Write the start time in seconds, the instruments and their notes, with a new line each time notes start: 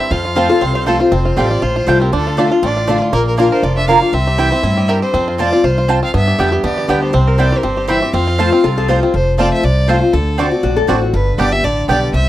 Already playing: steel-string acoustic guitar G2, five-string banjo E4, fiddle E5
0.00 five-string banjo C4
0.11 upright bass F2, steel-string acoustic guitar F2, five-string banjo F4, fiddle F5
0.25 five-string banjo F4
0.35 steel-string acoustic guitar F3 A3 C4 F4, mandolin C4 F4 C5 A5, five-string banjo C4, resonator guitar played with a steel bar F4
0.49 steel-string acoustic guitar C4 F4, five-string banjo F4, resonator guitar played with a steel bar A4
0.61 upright bass C2, steel-string acoustic guitar C3, five-string banjo C4, resonator guitar played with a steel bar C5
0.75 five-string banjo F4, resonator guitar played with a steel bar C5
0.86 steel-string acoustic guitar F3 A3 C4 F4, mandolin C4 F4 C5 A5, five-string banjo F4, fiddle A4, resonator guitar played with a steel bar A4
1.00 steel-string acoustic guitar C4 F4, five-string banjo F4, fiddle C5
1.12 upright bass F1, steel-string acoustic guitar F2, five-string banjo C4
1.25 five-string banjo F4
1.37 upright bass A1, steel-string acoustic guitar F3 G3 C4 G4, mandolin A3 F4 C5 G5, five-string banjo F4, fiddle D5
1.50 steel-string acoustic guitar C4 G4, five-string banjo F4
1.62 upright bass A#1, steel-string acoustic guitar A2, five-string banjo F4, fiddle C5
1.76 five-string banjo F4
1.87 upright bass C2, steel-string acoustic guitar F3 G3 C4 G4, mandolin A3 F4 C5 G5, five-string banjo F4
2.00 five-string banjo C4, steel-string acoustic guitar C4 G4, fiddle A#4
2.12 upright bass D2, steel-string acoustic guitar D3, five-string banjo D4, fiddle A4
2.27 five-string banjo F4
2.37 steel-string acoustic guitar D3 A3 D4 F4, mandolin A3 F4 D5 A5, five-string banjo D4
2.51 steel-string acoustic guitar D4 F4, five-string banjo F4
2.62 upright bass A1, steel-string acoustic guitar A2, five-string banjo C4, fiddle D5
2.69 five-string banjo D4
2.77 five-string banjo F4
2.87 steel-string acoustic guitar D3 A3 D4 F4, mandolin A3 F4 D5 A5, five-string banjo D4
3.02 five-string banjo F4
3.12 upright bass A#1, steel-string acoustic guitar A#2, five-string banjo A#3, fiddle A#4
3.27 fiddle A#4
3.37 steel-string acoustic guitar D3 A#3 D4 F4, mandolin A#3 F4 D5 A#5, five-string banjo F4, fiddle A#4
3.52 five-string banjo A#4, fiddle C5
3.63 upright bass F1, steel-string acoustic guitar F2, five-string banjo F4, fiddle D5
3.77 five-string banjo D4, fiddle E5
3.88 steel-string acoustic guitar D3 A#3 D4 F4, mandolin A#3 F4 D5 A#5, five-string banjo A#4, fiddle F5
4.01 five-string banjo A#3, steel-string acoustic guitar D4 F4
4.13 upright bass C2, steel-string acoustic guitar C3, five-string banjo C4, fiddle E5
4.27 five-string banjo G4
4.38 steel-string acoustic guitar E3 G3 C4 E4, mandolin C4 E4 C5 G5, five-string banjo E4
4.52 five-string banjo C4, steel-string acoustic guitar C4 E4
4.63 upright bass G2, steel-string acoustic guitar A2, five-string banjo E4
4.77 five-string banjo G3
4.88 steel-string acoustic guitar G2, mandolin C4 E4 C5 G5, five-string banjo G4, fiddle A#4
5.02 five-string banjo C4, fiddle C5
5.13 upright bass F2, steel-string acoustic guitar F2, five-string banjo C4
5.28 five-string banjo F4
5.38 steel-string acoustic guitar F3 A3 C4 F4, mandolin C4 F4 C5 A5, five-string banjo F4, fiddle D5
5.52 steel-string acoustic guitar C4 F4, five-string banjo F4
5.63 upright bass C2, steel-string acoustic guitar E2, five-string banjo F4, fiddle C5
5.78 five-string banjo F4
5.88 steel-string acoustic guitar F2, mandolin C4 F4 C5 A5, five-string banjo F4
6.03 five-string banjo C4, fiddle F5
6.14 upright bass G2, steel-string acoustic guitar G2, five-string banjo B3, fiddle E5
6.28 five-string banjo G4
6.38 upright bass F2, steel-string acoustic guitar D3 G3 B3 G4, mandolin B3 G4 D5 G5, five-string banjo B3
6.52 steel-string acoustic guitar B3 G4, five-string banjo G4
6.63 upright bass E2, steel-string acoustic guitar D3, five-string banjo B3, fiddle D5
6.78 five-string banjo G4
6.88 upright bass D2, steel-string acoustic guitar D3 G3 B3 G4, mandolin B3 G4 D5 G5, five-string banjo B3, fiddle B4
7.02 five-string banjo G4, fiddle C5
7.13 upright bass C2, steel-string acoustic guitar C3, five-string banjo C4
7.27 five-string banjo A#4
7.38 steel-string acoustic guitar E3 G3 C4 E4, mandolin C4 E4 C5 G5, five-string banjo C4, fiddle D5
7.52 steel-string acoustic guitar C4 E4, five-string banjo G4
7.58 fiddle A#4
7.63 upright bass G1, steel-string acoustic guitar G2, five-string banjo C4, fiddle C5
7.77 five-string banjo G4
7.88 steel-string acoustic guitar E3 G3 C4 E4, mandolin C4 E4 C5 G5, five-string banjo C4, fiddle E5
8.02 steel-string acoustic guitar C4 E4, five-string banjo G4
8.13 upright bass F2, steel-string acoustic guitar F2, five-string banjo C4, fiddle F5
8.27 five-string banjo F4
8.38 steel-string acoustic guitar F3 A3 C4 F4, mandolin C4 F4 C5 A5, five-string banjo F4, resonator guitar played with a steel bar F4
8.52 five-string banjo C4, steel-string acoustic guitar C4 F4
8.64 upright bass C2, steel-string acoustic guitar C3, five-string banjo F4, resonator guitar played with a steel bar A4
8.78 five-string banjo F3, resonator guitar played with a steel bar A4
8.88 steel-string acoustic guitar F3 A3 C4 F4, mandolin C4 F4 C5 A5, five-string banjo F4, resonator guitar played with a steel bar C5
9.02 five-string banjo C4, steel-string acoustic guitar C4 F4
9.14 upright bass F1, steel-string acoustic guitar F2, fiddle C5
9.38 steel-string acoustic guitar F3 A3 C4 F4, mandolin C4 F4 C5 A5, five-string banjo C4 F4, fiddle D5
9.53 fiddle E5
9.63 upright bass C2, steel-string acoustic guitar C3, fiddle D5
9.88 steel-string acoustic guitar F3 A3 C4 F4, mandolin C4 F4 C5 A5, five-string banjo C4 F4, fiddle C5
10.01 steel-string acoustic guitar C4 F4
10.13 upright bass D2, steel-string acoustic guitar D3, fiddle A4
10.38 steel-string acoustic guitar D3 A3 C4 F#4, mandolin C4 F#4 D5 A5, five-string banjo C4 D4 F#4, fiddle D5
10.52 steel-string acoustic guitar C4 F#4
10.63 upright bass A#1, steel-string acoustic guitar A2, resonator guitar played with a steel bar F#4
10.76 resonator guitar played with a steel bar A4
10.87 upright bass A1, steel-string acoustic guitar D3 A3 C4 F#4, mandolin C4 F#4 D5 A5, five-string banjo C4 D4 F#4, resonator guitar played with a steel bar F#4
11.02 steel-string acoustic guitar C4 F#4
11.13 upright bass G1, steel-string acoustic guitar G2, fiddle B4
11.38 upright bass G1, steel-string acoustic guitar D3 G3 B3 G4, mandolin B3 G4 D5 G5, five-string banjo B3 D4 G4, fiddle D5
11.52 steel-string acoustic guitar B3 G4, fiddle E5
11.63 upright bass A1, steel-string acoustic guitar D3, fiddle D5
11.88 upright bass B1, steel-string acoustic guitar D3 G3 B3 G4, mandolin B3 G4 D5 G5, five-string banjo B3 D4 G4, fiddle D5
12.13 upright bass C2, steel-string acoustic guitar C3, fiddle E5